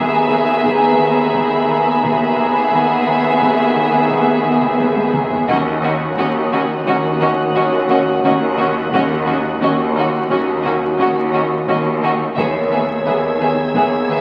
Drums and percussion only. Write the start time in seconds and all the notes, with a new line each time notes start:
0.65 taiko
1.34 taiko
2.03 taiko
2.72 taiko
3.41 taiko
4.10 taiko
4.61 taiko mid
4.79 taiko low-mid
4.96 taiko high
5.14 taiko mid
5.31 taiko low
5.49 taiko
6.17 taiko
6.85 taiko
7.55 taiko
8.23 taiko
8.92 taiko
9.61 taiko
10.30 taiko
10.99 taiko
11.68 taiko
12.37 taiko
13.06 taiko
13.75 taiko